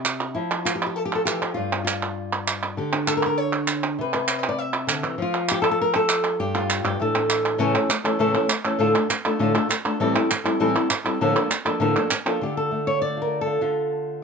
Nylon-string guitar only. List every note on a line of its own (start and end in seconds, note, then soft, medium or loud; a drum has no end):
0.00 0.34 C3 medium
0.00 0.35 G4 medium
0.35 1.42 F3 medium
0.35 0.96 E4 medium
0.65 0.75 F4 loud
0.75 0.85 G4 medium
0.87 0.96 G4 medium
0.96 1.05 A4 loud
1.05 1.15 G4 loud
1.15 1.25 A4 medium
1.25 1.41 E3 medium
1.25 1.54 G4 medium
1.42 1.57 F3 medium
1.54 2.76 G2 medium
1.54 1.83 F4 loud
1.84 2.77 F4 medium
2.77 3.97 D3 medium
2.77 3.39 G4 medium
2.93 3.97 D4 soft
3.07 3.17 A4 loud
3.17 3.25 A#4 medium
3.26 3.38 A#4 medium
3.38 3.83 C#5 loud
3.99 5.17 C3 medium
3.99 4.13 B4 medium
4.14 4.59 B4 medium
4.29 4.39 C5 medium
4.39 4.47 D5 loud
4.49 4.58 D5 medium
4.58 5.04 E5 loud
4.87 5.03 D3 medium
5.03 5.18 E3 medium
5.18 6.37 F3 medium
5.22 5.81 F4 loud
5.51 5.60 G4 loud
5.62 5.70 A4 loud
5.71 5.80 A4 loud
5.82 5.95 A#4 loud
5.96 6.39 A4 loud
6.40 6.83 G2 medium
6.40 6.83 G4 loud
6.55 7.00 F4 medium
6.84 6.99 G2 medium
6.84 7.00 G4 medium
7.00 7.57 A2 medium
7.00 7.58 E3 soft
7.00 7.59 A3 soft
7.00 7.15 D4 medium
7.00 7.59 A4 medium
7.16 7.59 D4 soft
7.58 7.74 A2 medium
7.58 7.74 C#3 medium
7.58 7.74 E3 medium
7.58 7.74 A3 medium
7.58 7.74 C#4 medium
7.58 7.73 A4 medium
7.74 7.88 E3 medium
7.74 7.89 A3 soft
7.74 7.89 C#4 medium
7.74 7.89 A4 medium
7.89 muted nylon-string guitar stroke medium
8.04 8.18 E3 soft
8.04 8.18 A3 soft
8.04 8.19 C#4 medium
8.04 8.19 A4 medium
8.19 8.34 A2 medium
8.19 8.34 C#3 medium
8.19 8.34 E3 medium
8.19 8.34 A3 medium
8.19 8.34 C#4 medium
8.19 8.33 A4 loud
8.34 8.48 E3 soft
8.34 8.48 A3 medium
8.34 8.48 C#4 medium
8.34 8.48 A4 medium
8.48 muted nylon-string guitar stroke medium
8.65 8.79 E3 soft
8.65 8.78 A3 soft
8.65 8.80 C#4 medium
8.65 8.79 A4 medium
8.79 8.94 A2 medium
8.79 8.94 D3 medium
8.79 8.94 A3 medium
8.79 8.95 D4 medium
8.79 8.95 F4 medium
8.79 8.94 A4 loud
8.95 9.09 A3 soft
8.95 9.09 D4 medium
8.95 9.09 F4 medium
8.95 9.09 A4 medium
9.09 muted nylon-string guitar stroke medium
9.25 9.39 A3 medium
9.25 9.38 D4 medium
9.25 9.39 F4 medium
9.25 9.40 A4 medium
9.39 9.54 A2 medium
9.39 9.54 D3 medium
9.39 9.54 A3 medium
9.39 9.54 D4 medium
9.39 9.54 F4 loud
9.39 9.53 A4 medium
9.55 9.69 A3 medium
9.55 9.68 D4 medium
9.55 9.69 F4 medium
9.55 9.68 A4 medium
9.69 muted nylon-string guitar stroke medium
9.85 10.00 A3 soft
9.85 10.00 D4 soft
9.85 10.00 F4 soft
9.85 9.99 A4 medium
10.00 10.15 A2 medium
10.00 10.15 E3 medium
10.00 10.15 G3 loud
10.00 10.15 C4 medium
10.00 10.14 E4 medium
10.00 10.13 A4 medium
10.15 10.31 G3 medium
10.15 10.30 C4 medium
10.15 10.30 E4 soft
10.15 10.30 A4 medium
10.31 muted nylon-string guitar stroke medium
10.44 10.59 G3 soft
10.44 10.59 C4 soft
10.44 10.60 E4 medium
10.44 10.59 A4 medium
10.60 10.75 A2 medium
10.60 10.75 E3 medium
10.60 10.75 G3 medium
10.60 10.75 C4 medium
10.60 10.74 E4 medium
10.60 10.74 A4 loud
10.75 10.89 G3 soft
10.75 10.89 C4 soft
10.75 10.89 E4 medium
10.75 10.90 A4 medium
10.90 muted nylon-string guitar stroke medium
11.04 11.20 G3 soft
11.04 11.20 C4 soft
11.04 11.20 E4 medium
11.04 11.19 A4 medium
11.21 11.35 A2 medium
11.21 11.35 D3 medium
11.21 11.35 F3 medium
11.21 11.36 A#3 medium
11.21 11.35 D4 medium
11.21 11.34 A4 medium
11.35 11.49 F3 medium
11.35 11.49 A#3 soft
11.35 11.50 D4 medium
11.35 11.50 A4 medium
11.50 muted nylon-string guitar stroke medium
11.65 11.79 F3 soft
11.65 11.80 A#3 medium
11.65 11.80 D4 soft
11.65 11.80 A4 medium
11.80 11.95 A2 medium
11.80 11.95 D3 medium
11.80 11.95 F3 medium
11.80 11.95 A#3 medium
11.80 11.96 D4 medium
11.80 11.95 A4 loud
11.96 12.10 F3 medium
11.96 12.10 A#3 medium
11.96 12.10 D4 medium
11.96 12.10 A4 medium
12.11 muted nylon-string guitar stroke medium
12.26 12.41 F3 soft
12.26 12.41 A#3 soft
12.26 12.40 D4 soft
12.26 12.42 F4 medium
12.26 12.40 A4 medium
12.41 13.60 D3 medium
12.41 12.71 A3 soft
12.41 13.16 F4 medium
12.41 12.57 G4 medium
12.57 13.17 A4 medium
12.71 14.23 A3 medium
12.87 13.01 C#5 loud
13.02 13.52 D5 loud
13.17 13.45 F4 soft
13.22 13.41 A#4 medium
13.41 13.92 A4 medium
13.46 13.60 F4 soft
13.61 14.23 D3 medium
13.61 14.23 F4 medium